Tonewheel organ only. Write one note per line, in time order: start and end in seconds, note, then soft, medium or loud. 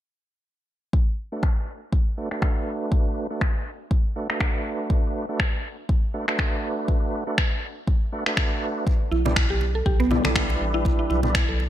1.32 1.43 A3 medium
1.32 1.43 D4 medium
1.32 1.43 F#4 medium
1.32 1.43 B4 medium
2.17 2.29 A3 medium
2.17 2.29 D4 medium
2.17 2.29 F#4 medium
2.17 2.29 B4 medium
2.31 3.27 A3 medium
2.31 3.27 D4 medium
2.31 3.27 F#4 medium
2.31 3.27 B4 loud
3.31 3.42 A3 medium
3.31 3.42 D4 medium
3.31 3.42 F#4 medium
3.31 3.42 B4 medium
4.16 4.28 A3 medium
4.16 4.28 D4 medium
4.16 4.28 F#4 medium
4.16 4.28 B4 medium
4.30 5.26 A3 medium
4.30 5.26 D4 medium
4.30 5.26 F#4 medium
4.30 5.26 B4 medium
5.29 5.40 A3 medium
5.29 5.40 D4 medium
5.29 5.40 F#4 medium
5.29 5.40 B4 loud
6.14 6.26 A3 medium
6.14 6.26 D4 medium
6.14 6.26 F#4 medium
6.14 6.26 B4 medium
6.28 7.24 A3 medium
6.28 7.24 D4 medium
6.28 7.24 F#4 medium
6.28 7.24 B4 loud
7.27 7.38 A3 medium
7.27 7.38 D4 medium
7.27 7.38 F#4 medium
7.27 7.38 B4 medium
8.12 8.24 A3 medium
8.12 8.24 D4 medium
8.12 8.24 F#4 medium
8.12 8.24 B4 medium
8.26 8.85 A3 medium
8.26 8.85 D4 medium
8.26 8.85 F#4 medium
8.26 8.85 B4 loud
9.26 9.37 G3 medium
9.26 9.37 D4 medium
9.26 9.37 E4 medium
9.26 9.37 B4 loud
10.11 10.23 G3 medium
10.11 10.23 D4 medium
10.11 10.23 E4 medium
10.11 10.23 B4 medium
10.25 11.21 G3 medium
10.25 11.21 D4 medium
10.25 11.21 E4 medium
10.25 11.21 B4 loud
11.24 11.35 G3 medium
11.24 11.35 D4 medium
11.24 11.35 E4 medium
11.24 11.35 B4 loud